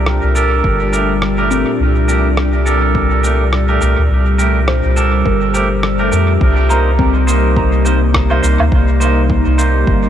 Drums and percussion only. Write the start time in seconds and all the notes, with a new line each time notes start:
0.06 cross-stick
0.35 shaker
0.64 kick
0.93 shaker
1.22 cross-stick
1.51 shaker
2.09 shaker
2.37 cross-stick
2.66 shaker
2.95 kick
3.24 shaker
3.53 cross-stick
3.81 shaker
4.39 shaker
4.68 cross-stick
4.97 shaker
5.26 kick
5.54 shaker
5.83 cross-stick
6.12 shaker
6.41 kick
6.70 shaker
6.99 kick
7.28 shaker
7.57 kick
7.86 shaker
8.14 kick, cross-stick
8.31 low woodblock
8.43 shaker
8.60 low woodblock
8.72 kick
9.01 shaker
9.30 kick
9.59 shaker
9.87 kick